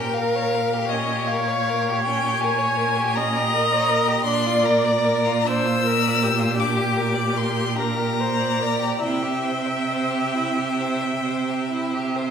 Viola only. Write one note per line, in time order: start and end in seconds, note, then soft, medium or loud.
0.00 0.89 A#4 medium
0.90 3.18 C#5 medium
3.17 4.26 D#5 medium
4.27 5.47 D5 medium
5.50 5.88 C5 medium
5.87 6.25 A#4 medium
6.24 7.80 G4 medium
7.79 8.22 A#4 medium
8.20 8.63 C5 medium
8.62 9.04 D5 medium
9.04 12.30 E5 medium